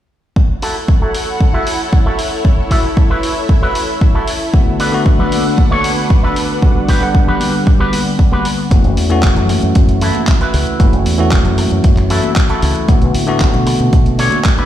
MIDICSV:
0, 0, Header, 1, 7, 480
1, 0, Start_track
1, 0, Tempo, 521739
1, 334, Time_signature, 4, 2, 24, 8
1, 13483, End_track
2, 0, Start_track
2, 0, Title_t, "Analog synth pad"
2, 0, Program_c, 0, 89
2, 333, Note_on_c, 0, 69, 70
2, 334, Note_on_c, 0, 64, 76
2, 334, Note_on_c, 0, 78, 83
2, 336, Note_on_c, 0, 73, 72
2, 2235, Note_off_c, 0, 78, 0
2, 2255, Note_on_c, 0, 76, 83
2, 4137, Note_off_c, 0, 64, 0
2, 4138, Note_off_c, 0, 73, 0
2, 4155, Note_off_c, 0, 76, 0
2, 4172, Note_on_c, 0, 62, 76
2, 4172, Note_on_c, 0, 71, 73
2, 4172, Note_on_c, 0, 78, 83
2, 6057, Note_off_c, 0, 69, 0
2, 6095, Note_on_c, 0, 55, 71
2, 7976, Note_off_c, 0, 71, 0
2, 7976, Note_off_c, 0, 78, 0
2, 7977, Note_off_c, 0, 62, 0
2, 7996, Note_off_c, 0, 55, 0
2, 13483, End_track
3, 0, Start_track
3, 0, Title_t, "Clean electric guitar"
3, 0, Program_c, 1, 27
3, 574, Note_on_c, 1, 64, 83
3, 574, Note_on_c, 1, 66, 89
3, 577, Note_on_c, 1, 69, 108
3, 695, Note_off_c, 1, 64, 0
3, 696, Note_off_c, 1, 66, 0
3, 697, Note_off_c, 1, 69, 0
3, 933, Note_on_c, 1, 66, 66
3, 937, Note_on_c, 1, 64, 63
3, 938, Note_on_c, 1, 69, 84
3, 1174, Note_off_c, 1, 64, 0
3, 1175, Note_off_c, 1, 66, 0
3, 1177, Note_off_c, 1, 69, 0
3, 1411, Note_on_c, 1, 64, 101
3, 1415, Note_on_c, 1, 66, 90
3, 1420, Note_on_c, 1, 69, 96
3, 1593, Note_off_c, 1, 64, 0
3, 1595, Note_off_c, 1, 66, 0
3, 1596, Note_off_c, 1, 69, 0
3, 1892, Note_on_c, 1, 66, 75
3, 1895, Note_on_c, 1, 64, 77
3, 1898, Note_on_c, 1, 69, 86
3, 2012, Note_off_c, 1, 64, 0
3, 2014, Note_off_c, 1, 66, 0
3, 2016, Note_off_c, 1, 69, 0
3, 2489, Note_on_c, 1, 64, 100
3, 2493, Note_on_c, 1, 66, 93
3, 2499, Note_on_c, 1, 69, 97
3, 2613, Note_off_c, 1, 64, 0
3, 2615, Note_off_c, 1, 66, 0
3, 2617, Note_off_c, 1, 69, 0
3, 2852, Note_on_c, 1, 64, 72
3, 2853, Note_on_c, 1, 66, 76
3, 2857, Note_on_c, 1, 71, 90
3, 3093, Note_off_c, 1, 64, 0
3, 3095, Note_off_c, 1, 66, 0
3, 3097, Note_off_c, 1, 71, 0
3, 3330, Note_on_c, 1, 66, 89
3, 3333, Note_on_c, 1, 64, 89
3, 3336, Note_on_c, 1, 71, 109
3, 3512, Note_off_c, 1, 64, 0
3, 3514, Note_off_c, 1, 66, 0
3, 3515, Note_off_c, 1, 71, 0
3, 3810, Note_on_c, 1, 66, 74
3, 3815, Note_on_c, 1, 64, 70
3, 3817, Note_on_c, 1, 69, 90
3, 3932, Note_off_c, 1, 64, 0
3, 3933, Note_off_c, 1, 66, 0
3, 3935, Note_off_c, 1, 69, 0
3, 4409, Note_on_c, 1, 62, 100
3, 4417, Note_on_c, 1, 69, 78
3, 4417, Note_on_c, 1, 71, 114
3, 4534, Note_off_c, 1, 62, 0
3, 4535, Note_off_c, 1, 69, 0
3, 4537, Note_off_c, 1, 71, 0
3, 4773, Note_on_c, 1, 62, 90
3, 4779, Note_on_c, 1, 69, 65
3, 4780, Note_on_c, 1, 71, 87
3, 5015, Note_off_c, 1, 62, 0
3, 5016, Note_off_c, 1, 69, 0
3, 5018, Note_off_c, 1, 71, 0
3, 5251, Note_on_c, 1, 62, 101
3, 5260, Note_on_c, 1, 73, 117
3, 5261, Note_on_c, 1, 69, 77
3, 5434, Note_off_c, 1, 62, 0
3, 5436, Note_off_c, 1, 69, 0
3, 5437, Note_off_c, 1, 73, 0
3, 5732, Note_on_c, 1, 62, 83
3, 5738, Note_on_c, 1, 69, 62
3, 5739, Note_on_c, 1, 71, 95
3, 5853, Note_off_c, 1, 62, 0
3, 5854, Note_off_c, 1, 69, 0
3, 5856, Note_off_c, 1, 71, 0
3, 6331, Note_on_c, 1, 66, 102
3, 6334, Note_on_c, 1, 67, 99
3, 6340, Note_on_c, 1, 71, 102
3, 6454, Note_off_c, 1, 66, 0
3, 6456, Note_off_c, 1, 67, 0
3, 6457, Note_off_c, 1, 71, 0
3, 6694, Note_on_c, 1, 66, 73
3, 6694, Note_on_c, 1, 67, 71
3, 6699, Note_on_c, 1, 71, 93
3, 6934, Note_off_c, 1, 66, 0
3, 6936, Note_off_c, 1, 67, 0
3, 6937, Note_off_c, 1, 71, 0
3, 7174, Note_on_c, 1, 66, 95
3, 7174, Note_on_c, 1, 67, 97
3, 7177, Note_on_c, 1, 71, 118
3, 7353, Note_off_c, 1, 66, 0
3, 7355, Note_off_c, 1, 67, 0
3, 7356, Note_off_c, 1, 71, 0
3, 7654, Note_on_c, 1, 67, 75
3, 7655, Note_on_c, 1, 66, 72
3, 7659, Note_on_c, 1, 71, 92
3, 7773, Note_off_c, 1, 66, 0
3, 7774, Note_off_c, 1, 67, 0
3, 7776, Note_off_c, 1, 71, 0
3, 9213, Note_on_c, 1, 64, 99
3, 9215, Note_on_c, 1, 66, 96
3, 9222, Note_on_c, 1, 69, 94
3, 9394, Note_off_c, 1, 64, 0
3, 9396, Note_off_c, 1, 66, 0
3, 9398, Note_off_c, 1, 69, 0
3, 9577, Note_on_c, 1, 66, 67
3, 9578, Note_on_c, 1, 64, 76
3, 9581, Note_on_c, 1, 71, 95
3, 10055, Note_off_c, 1, 64, 0
3, 10057, Note_off_c, 1, 66, 0
3, 10058, Note_off_c, 1, 71, 0
3, 11131, Note_on_c, 1, 64, 98
3, 11134, Note_on_c, 1, 66, 104
3, 11142, Note_on_c, 1, 69, 90
3, 11314, Note_off_c, 1, 64, 0
3, 11316, Note_off_c, 1, 66, 0
3, 11317, Note_off_c, 1, 69, 0
3, 11496, Note_on_c, 1, 66, 74
3, 11497, Note_on_c, 1, 64, 83
3, 11500, Note_on_c, 1, 69, 93
3, 11854, Note_off_c, 1, 64, 0
3, 11855, Note_off_c, 1, 66, 0
3, 11857, Note_off_c, 1, 69, 0
3, 13049, Note_on_c, 1, 62, 106
3, 13056, Note_on_c, 1, 69, 80
3, 13057, Note_on_c, 1, 73, 111
3, 13233, Note_off_c, 1, 62, 0
3, 13235, Note_off_c, 1, 69, 0
3, 13236, Note_off_c, 1, 73, 0
3, 13410, Note_on_c, 1, 62, 87
3, 13418, Note_on_c, 1, 69, 61
3, 13418, Note_on_c, 1, 71, 93
3, 13483, Note_off_c, 1, 62, 0
3, 13483, Note_off_c, 1, 69, 0
3, 13483, Note_off_c, 1, 71, 0
3, 13483, End_track
4, 0, Start_track
4, 0, Title_t, "Tine electric piano"
4, 0, Program_c, 2, 4
4, 4169, Note_on_c, 2, 50, 77
4, 4171, Note_on_c, 2, 57, 67
4, 4175, Note_on_c, 2, 59, 70
4, 4178, Note_on_c, 2, 66, 80
4, 4504, Note_off_c, 2, 50, 0
4, 4505, Note_off_c, 2, 57, 0
4, 4507, Note_off_c, 2, 59, 0
4, 4509, Note_off_c, 2, 66, 0
4, 4526, Note_on_c, 2, 50, 91
4, 4533, Note_on_c, 2, 57, 83
4, 4540, Note_on_c, 2, 59, 83
4, 4546, Note_on_c, 2, 66, 103
4, 6061, Note_off_c, 2, 50, 0
4, 6064, Note_off_c, 2, 57, 0
4, 6068, Note_off_c, 2, 59, 0
4, 6071, Note_off_c, 2, 66, 0
4, 6092, Note_on_c, 2, 50, 76
4, 6095, Note_on_c, 2, 55, 72
4, 6098, Note_on_c, 2, 59, 71
4, 6100, Note_on_c, 2, 66, 86
4, 6425, Note_off_c, 2, 50, 0
4, 6427, Note_off_c, 2, 55, 0
4, 6428, Note_off_c, 2, 59, 0
4, 6429, Note_off_c, 2, 66, 0
4, 6449, Note_on_c, 2, 50, 88
4, 6455, Note_on_c, 2, 55, 86
4, 6462, Note_on_c, 2, 59, 86
4, 6466, Note_on_c, 2, 78, 103
4, 7983, Note_off_c, 2, 50, 0
4, 7985, Note_off_c, 2, 55, 0
4, 7989, Note_off_c, 2, 59, 0
4, 7991, Note_off_c, 2, 78, 0
4, 8010, Note_on_c, 2, 52, 79
4, 8013, Note_on_c, 2, 57, 69
4, 8016, Note_on_c, 2, 61, 69
4, 8020, Note_on_c, 2, 66, 83
4, 8344, Note_off_c, 2, 52, 0
4, 8346, Note_off_c, 2, 57, 0
4, 8348, Note_off_c, 2, 61, 0
4, 8349, Note_off_c, 2, 66, 0
4, 8369, Note_on_c, 2, 52, 91
4, 8374, Note_on_c, 2, 57, 84
4, 8380, Note_on_c, 2, 61, 82
4, 8386, Note_on_c, 2, 66, 102
4, 9902, Note_off_c, 2, 52, 0
4, 9905, Note_off_c, 2, 57, 0
4, 9908, Note_off_c, 2, 61, 0
4, 9911, Note_off_c, 2, 66, 0
4, 9931, Note_on_c, 2, 52, 76
4, 9934, Note_on_c, 2, 57, 72
4, 9938, Note_on_c, 2, 61, 72
4, 9940, Note_on_c, 2, 66, 86
4, 10265, Note_off_c, 2, 52, 0
4, 10266, Note_off_c, 2, 57, 0
4, 10268, Note_off_c, 2, 61, 0
4, 10270, Note_off_c, 2, 66, 0
4, 10288, Note_on_c, 2, 52, 96
4, 10294, Note_on_c, 2, 57, 83
4, 10299, Note_on_c, 2, 61, 86
4, 10307, Note_on_c, 2, 66, 103
4, 11822, Note_off_c, 2, 52, 0
4, 11825, Note_off_c, 2, 57, 0
4, 11827, Note_off_c, 2, 61, 0
4, 11831, Note_off_c, 2, 66, 0
4, 11848, Note_on_c, 2, 50, 79
4, 11851, Note_on_c, 2, 57, 70
4, 11854, Note_on_c, 2, 59, 69
4, 11858, Note_on_c, 2, 66, 82
4, 12184, Note_off_c, 2, 50, 0
4, 12185, Note_off_c, 2, 57, 0
4, 12186, Note_off_c, 2, 59, 0
4, 12189, Note_off_c, 2, 66, 0
4, 12205, Note_on_c, 2, 50, 92
4, 12211, Note_on_c, 2, 57, 89
4, 12217, Note_on_c, 2, 59, 87
4, 12223, Note_on_c, 2, 66, 106
4, 13483, Note_off_c, 2, 50, 0
4, 13483, Note_off_c, 2, 57, 0
4, 13483, Note_off_c, 2, 59, 0
4, 13483, Note_off_c, 2, 66, 0
4, 13483, End_track
5, 0, Start_track
5, 0, Title_t, "Fingered electric bass"
5, 0, Program_c, 3, 33
5, 8016, Note_on_c, 3, 30, 89
5, 8109, Note_off_c, 3, 30, 0
5, 8134, Note_on_c, 3, 30, 90
5, 8227, Note_off_c, 3, 30, 0
5, 8255, Note_on_c, 3, 40, 82
5, 8495, Note_on_c, 3, 28, 83
5, 8509, Note_off_c, 3, 40, 0
5, 8589, Note_off_c, 3, 28, 0
5, 8616, Note_on_c, 3, 42, 82
5, 8801, Note_off_c, 3, 42, 0
5, 8858, Note_on_c, 3, 42, 79
5, 8948, Note_off_c, 3, 42, 0
5, 8976, Note_on_c, 3, 42, 90
5, 9293, Note_off_c, 3, 42, 0
5, 9695, Note_on_c, 3, 37, 92
5, 9789, Note_off_c, 3, 37, 0
5, 9935, Note_on_c, 3, 30, 91
5, 10029, Note_off_c, 3, 30, 0
5, 10057, Note_on_c, 3, 30, 86
5, 10148, Note_off_c, 3, 30, 0
5, 10176, Note_on_c, 3, 40, 84
5, 10414, Note_on_c, 3, 28, 85
5, 10428, Note_off_c, 3, 40, 0
5, 10508, Note_off_c, 3, 28, 0
5, 10536, Note_on_c, 3, 42, 85
5, 10721, Note_off_c, 3, 42, 0
5, 10778, Note_on_c, 3, 42, 81
5, 10869, Note_off_c, 3, 42, 0
5, 10895, Note_on_c, 3, 42, 89
5, 11212, Note_off_c, 3, 42, 0
5, 11614, Note_on_c, 3, 37, 92
5, 11708, Note_off_c, 3, 37, 0
5, 11854, Note_on_c, 3, 35, 91
5, 11948, Note_off_c, 3, 35, 0
5, 11976, Note_on_c, 3, 35, 89
5, 12068, Note_off_c, 3, 35, 0
5, 12095, Note_on_c, 3, 45, 83
5, 12333, Note_on_c, 3, 33, 86
5, 12347, Note_off_c, 3, 45, 0
5, 12428, Note_off_c, 3, 33, 0
5, 12455, Note_on_c, 3, 47, 84
5, 12641, Note_off_c, 3, 47, 0
5, 12697, Note_on_c, 3, 47, 77
5, 12788, Note_off_c, 3, 47, 0
5, 12813, Note_on_c, 3, 47, 94
5, 13131, Note_off_c, 3, 47, 0
5, 13483, End_track
6, 0, Start_track
6, 0, Title_t, "Muted clean electric guitar strokes"
6, 811, Note_on_c, 9, 29, 28
6, 903, Note_off_c, 9, 29, 0
6, 1770, Note_on_c, 9, 29, 29
6, 1862, Note_off_c, 9, 29, 0
6, 2133, Note_on_c, 9, 29, 30
6, 2225, Note_off_c, 9, 29, 0
6, 2730, Note_on_c, 9, 29, 28
6, 2822, Note_off_c, 9, 29, 0
6, 3690, Note_on_c, 9, 29, 28
6, 3782, Note_off_c, 9, 29, 0
6, 4053, Note_on_c, 9, 29, 30
6, 4145, Note_off_c, 9, 29, 0
6, 4652, Note_on_c, 9, 29, 28
6, 4744, Note_off_c, 9, 29, 0
6, 5611, Note_on_c, 9, 29, 30
6, 5703, Note_off_c, 9, 29, 0
6, 5973, Note_on_c, 9, 29, 30
6, 6065, Note_off_c, 9, 29, 0
6, 6573, Note_on_c, 9, 29, 31
6, 6665, Note_off_c, 9, 29, 0
6, 7532, Note_on_c, 9, 29, 32
6, 7624, Note_off_c, 9, 29, 0
6, 7892, Note_on_c, 9, 29, 31
6, 7984, Note_off_c, 9, 29, 0
6, 8613, Note_on_c, 9, 29, 85
6, 8705, Note_off_c, 9, 29, 0
6, 8733, Note_on_c, 9, 29, 106
6, 8825, Note_off_c, 9, 29, 0
6, 8854, Note_on_c, 9, 29, 31
6, 8946, Note_off_c, 9, 29, 0
6, 10534, Note_on_c, 9, 29, 86
6, 10626, Note_off_c, 9, 29, 0
6, 10652, Note_on_c, 9, 29, 106
6, 10744, Note_off_c, 9, 29, 0
6, 10774, Note_on_c, 9, 29, 31
6, 10866, Note_off_c, 9, 29, 0
6, 12453, Note_on_c, 9, 29, 84
6, 12545, Note_off_c, 9, 29, 0
6, 12571, Note_on_c, 9, 29, 106
6, 12663, Note_off_c, 9, 29, 0
6, 12693, Note_on_c, 9, 29, 31
6, 12785, Note_off_c, 9, 29, 0
6, 13483, End_track
7, 0, Start_track
7, 0, Title_t, "Drums"
7, 334, Note_on_c, 9, 36, 105
7, 426, Note_off_c, 9, 36, 0
7, 574, Note_on_c, 9, 46, 88
7, 666, Note_off_c, 9, 46, 0
7, 813, Note_on_c, 9, 36, 103
7, 905, Note_off_c, 9, 36, 0
7, 1053, Note_on_c, 9, 46, 93
7, 1145, Note_off_c, 9, 46, 0
7, 1293, Note_on_c, 9, 36, 101
7, 1385, Note_off_c, 9, 36, 0
7, 1534, Note_on_c, 9, 46, 95
7, 1626, Note_off_c, 9, 46, 0
7, 1772, Note_on_c, 9, 36, 102
7, 1864, Note_off_c, 9, 36, 0
7, 2012, Note_on_c, 9, 46, 96
7, 2104, Note_off_c, 9, 46, 0
7, 2252, Note_on_c, 9, 36, 107
7, 2344, Note_off_c, 9, 36, 0
7, 2492, Note_on_c, 9, 36, 57
7, 2493, Note_on_c, 9, 46, 89
7, 2584, Note_off_c, 9, 36, 0
7, 2585, Note_off_c, 9, 46, 0
7, 2732, Note_on_c, 9, 36, 110
7, 2824, Note_off_c, 9, 36, 0
7, 2974, Note_on_c, 9, 46, 95
7, 3066, Note_off_c, 9, 46, 0
7, 3212, Note_on_c, 9, 36, 111
7, 3304, Note_off_c, 9, 36, 0
7, 3453, Note_on_c, 9, 46, 101
7, 3545, Note_off_c, 9, 46, 0
7, 3692, Note_on_c, 9, 36, 112
7, 3784, Note_off_c, 9, 36, 0
7, 3933, Note_on_c, 9, 46, 103
7, 4025, Note_off_c, 9, 46, 0
7, 4173, Note_on_c, 9, 36, 117
7, 4265, Note_off_c, 9, 36, 0
7, 4414, Note_on_c, 9, 46, 96
7, 4506, Note_off_c, 9, 46, 0
7, 4653, Note_on_c, 9, 36, 114
7, 4745, Note_off_c, 9, 36, 0
7, 4777, Note_on_c, 9, 64, 83
7, 4869, Note_off_c, 9, 64, 0
7, 4895, Note_on_c, 9, 46, 99
7, 4897, Note_on_c, 9, 63, 64
7, 4987, Note_off_c, 9, 46, 0
7, 4989, Note_off_c, 9, 63, 0
7, 5133, Note_on_c, 9, 36, 113
7, 5134, Note_on_c, 9, 63, 93
7, 5225, Note_off_c, 9, 36, 0
7, 5226, Note_off_c, 9, 63, 0
7, 5375, Note_on_c, 9, 46, 102
7, 5467, Note_off_c, 9, 46, 0
7, 5614, Note_on_c, 9, 36, 112
7, 5706, Note_off_c, 9, 36, 0
7, 5854, Note_on_c, 9, 46, 103
7, 5946, Note_off_c, 9, 46, 0
7, 6094, Note_on_c, 9, 36, 112
7, 6186, Note_off_c, 9, 36, 0
7, 6334, Note_on_c, 9, 46, 97
7, 6335, Note_on_c, 9, 36, 60
7, 6426, Note_off_c, 9, 46, 0
7, 6427, Note_off_c, 9, 36, 0
7, 6575, Note_on_c, 9, 36, 113
7, 6667, Note_off_c, 9, 36, 0
7, 6702, Note_on_c, 9, 64, 82
7, 6794, Note_off_c, 9, 64, 0
7, 6806, Note_on_c, 9, 63, 69
7, 6815, Note_on_c, 9, 46, 99
7, 6898, Note_off_c, 9, 63, 0
7, 6907, Note_off_c, 9, 46, 0
7, 7055, Note_on_c, 9, 36, 114
7, 7147, Note_off_c, 9, 36, 0
7, 7295, Note_on_c, 9, 46, 108
7, 7297, Note_on_c, 9, 63, 66
7, 7387, Note_off_c, 9, 46, 0
7, 7389, Note_off_c, 9, 63, 0
7, 7535, Note_on_c, 9, 36, 109
7, 7627, Note_off_c, 9, 36, 0
7, 7651, Note_on_c, 9, 63, 91
7, 7743, Note_off_c, 9, 63, 0
7, 7775, Note_on_c, 9, 46, 104
7, 7867, Note_off_c, 9, 46, 0
7, 8015, Note_on_c, 9, 36, 113
7, 8015, Note_on_c, 9, 42, 89
7, 8017, Note_on_c, 9, 63, 91
7, 8107, Note_off_c, 9, 36, 0
7, 8107, Note_off_c, 9, 42, 0
7, 8109, Note_off_c, 9, 63, 0
7, 8136, Note_on_c, 9, 42, 38
7, 8228, Note_off_c, 9, 42, 0
7, 8254, Note_on_c, 9, 46, 93
7, 8346, Note_off_c, 9, 46, 0
7, 8375, Note_on_c, 9, 42, 38
7, 8467, Note_off_c, 9, 42, 0
7, 8490, Note_on_c, 9, 39, 116
7, 8493, Note_on_c, 9, 42, 91
7, 8495, Note_on_c, 9, 36, 111
7, 8582, Note_off_c, 9, 39, 0
7, 8585, Note_off_c, 9, 42, 0
7, 8587, Note_off_c, 9, 36, 0
7, 8615, Note_on_c, 9, 42, 38
7, 8621, Note_on_c, 9, 64, 76
7, 8707, Note_off_c, 9, 42, 0
7, 8713, Note_off_c, 9, 64, 0
7, 8733, Note_on_c, 9, 46, 101
7, 8739, Note_on_c, 9, 63, 64
7, 8825, Note_off_c, 9, 46, 0
7, 8831, Note_off_c, 9, 63, 0
7, 8854, Note_on_c, 9, 42, 40
7, 8946, Note_off_c, 9, 42, 0
7, 8972, Note_on_c, 9, 42, 90
7, 8975, Note_on_c, 9, 36, 116
7, 9064, Note_off_c, 9, 42, 0
7, 9067, Note_off_c, 9, 36, 0
7, 9096, Note_on_c, 9, 42, 42
7, 9188, Note_off_c, 9, 42, 0
7, 9213, Note_on_c, 9, 46, 102
7, 9305, Note_off_c, 9, 46, 0
7, 9335, Note_on_c, 9, 42, 39
7, 9337, Note_on_c, 9, 63, 78
7, 9427, Note_off_c, 9, 42, 0
7, 9429, Note_off_c, 9, 63, 0
7, 9450, Note_on_c, 9, 39, 118
7, 9454, Note_on_c, 9, 42, 93
7, 9455, Note_on_c, 9, 36, 113
7, 9542, Note_off_c, 9, 39, 0
7, 9546, Note_off_c, 9, 42, 0
7, 9547, Note_off_c, 9, 36, 0
7, 9576, Note_on_c, 9, 42, 38
7, 9668, Note_off_c, 9, 42, 0
7, 9695, Note_on_c, 9, 46, 102
7, 9787, Note_off_c, 9, 46, 0
7, 9816, Note_on_c, 9, 42, 39
7, 9908, Note_off_c, 9, 42, 0
7, 9934, Note_on_c, 9, 42, 88
7, 9934, Note_on_c, 9, 63, 81
7, 9935, Note_on_c, 9, 36, 122
7, 10026, Note_off_c, 9, 42, 0
7, 10026, Note_off_c, 9, 63, 0
7, 10027, Note_off_c, 9, 36, 0
7, 10057, Note_on_c, 9, 42, 38
7, 10149, Note_off_c, 9, 42, 0
7, 10175, Note_on_c, 9, 46, 102
7, 10267, Note_off_c, 9, 46, 0
7, 10296, Note_on_c, 9, 42, 37
7, 10388, Note_off_c, 9, 42, 0
7, 10409, Note_on_c, 9, 39, 115
7, 10413, Note_on_c, 9, 42, 88
7, 10414, Note_on_c, 9, 36, 112
7, 10501, Note_off_c, 9, 39, 0
7, 10505, Note_off_c, 9, 42, 0
7, 10506, Note_off_c, 9, 36, 0
7, 10532, Note_on_c, 9, 64, 86
7, 10535, Note_on_c, 9, 42, 37
7, 10624, Note_off_c, 9, 64, 0
7, 10627, Note_off_c, 9, 42, 0
7, 10653, Note_on_c, 9, 46, 103
7, 10655, Note_on_c, 9, 63, 63
7, 10745, Note_off_c, 9, 46, 0
7, 10747, Note_off_c, 9, 63, 0
7, 10775, Note_on_c, 9, 42, 38
7, 10867, Note_off_c, 9, 42, 0
7, 10892, Note_on_c, 9, 42, 88
7, 10895, Note_on_c, 9, 36, 115
7, 10984, Note_off_c, 9, 42, 0
7, 10987, Note_off_c, 9, 36, 0
7, 11011, Note_on_c, 9, 39, 37
7, 11015, Note_on_c, 9, 42, 40
7, 11103, Note_off_c, 9, 39, 0
7, 11107, Note_off_c, 9, 42, 0
7, 11134, Note_on_c, 9, 46, 107
7, 11226, Note_off_c, 9, 46, 0
7, 11256, Note_on_c, 9, 42, 38
7, 11257, Note_on_c, 9, 63, 96
7, 11348, Note_off_c, 9, 42, 0
7, 11349, Note_off_c, 9, 63, 0
7, 11370, Note_on_c, 9, 39, 120
7, 11374, Note_on_c, 9, 42, 92
7, 11375, Note_on_c, 9, 36, 116
7, 11462, Note_off_c, 9, 39, 0
7, 11466, Note_off_c, 9, 42, 0
7, 11467, Note_off_c, 9, 36, 0
7, 11496, Note_on_c, 9, 42, 39
7, 11588, Note_off_c, 9, 42, 0
7, 11614, Note_on_c, 9, 46, 106
7, 11706, Note_off_c, 9, 46, 0
7, 11735, Note_on_c, 9, 42, 39
7, 11827, Note_off_c, 9, 42, 0
7, 11854, Note_on_c, 9, 36, 120
7, 11854, Note_on_c, 9, 42, 87
7, 11858, Note_on_c, 9, 63, 94
7, 11946, Note_off_c, 9, 36, 0
7, 11946, Note_off_c, 9, 42, 0
7, 11950, Note_off_c, 9, 63, 0
7, 11975, Note_on_c, 9, 42, 38
7, 12067, Note_off_c, 9, 42, 0
7, 12093, Note_on_c, 9, 46, 104
7, 12185, Note_off_c, 9, 46, 0
7, 12214, Note_on_c, 9, 42, 36
7, 12306, Note_off_c, 9, 42, 0
7, 12329, Note_on_c, 9, 39, 113
7, 12333, Note_on_c, 9, 42, 87
7, 12334, Note_on_c, 9, 36, 119
7, 12421, Note_off_c, 9, 39, 0
7, 12425, Note_off_c, 9, 42, 0
7, 12426, Note_off_c, 9, 36, 0
7, 12455, Note_on_c, 9, 42, 35
7, 12456, Note_on_c, 9, 64, 76
7, 12547, Note_off_c, 9, 42, 0
7, 12548, Note_off_c, 9, 64, 0
7, 12572, Note_on_c, 9, 63, 60
7, 12573, Note_on_c, 9, 46, 107
7, 12664, Note_off_c, 9, 63, 0
7, 12665, Note_off_c, 9, 46, 0
7, 12696, Note_on_c, 9, 42, 37
7, 12788, Note_off_c, 9, 42, 0
7, 12814, Note_on_c, 9, 36, 117
7, 12814, Note_on_c, 9, 42, 84
7, 12906, Note_off_c, 9, 36, 0
7, 12906, Note_off_c, 9, 42, 0
7, 12935, Note_on_c, 9, 42, 38
7, 13027, Note_off_c, 9, 42, 0
7, 13053, Note_on_c, 9, 46, 108
7, 13145, Note_off_c, 9, 46, 0
7, 13175, Note_on_c, 9, 42, 38
7, 13175, Note_on_c, 9, 63, 87
7, 13267, Note_off_c, 9, 42, 0
7, 13267, Note_off_c, 9, 63, 0
7, 13289, Note_on_c, 9, 39, 116
7, 13293, Note_on_c, 9, 42, 84
7, 13294, Note_on_c, 9, 36, 115
7, 13381, Note_off_c, 9, 39, 0
7, 13385, Note_off_c, 9, 42, 0
7, 13386, Note_off_c, 9, 36, 0
7, 13414, Note_on_c, 9, 42, 38
7, 13483, Note_off_c, 9, 42, 0
7, 13483, End_track
0, 0, End_of_file